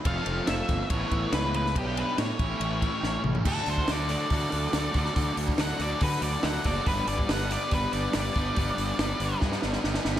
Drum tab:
CC |----------------|----------------|x---------------|----------------|
RD |x-x-x-x-x-x-x-x-|x-x-x-x-x-x-----|----------------|----------------|
HH |----------------|----------------|--o-o-o-o-o-o-o-|o-o-o-o-o-o-o-o-|
SD |----o-------o--o|----o-------o---|----o-------o--o|----o-------o---|
T2 |----------------|--------------o-|----------------|----------------|
FT |----------------|---------------o|----------------|----------------|
BD |o-----o-o-o-----|o-----o---o-----|o--o----o-----o-|o--o----o-----o-|

CC |----------------|----------------|
RD |----------------|----------------|
HH |o-o-o-o-o-o-o-o-|o-o-o-o---------|
SD |----o-------o---|----o---oooooooo|
T2 |----------------|----------------|
FT |----------------|----------------|
BD |o--o----o-----o-|o-------o-------|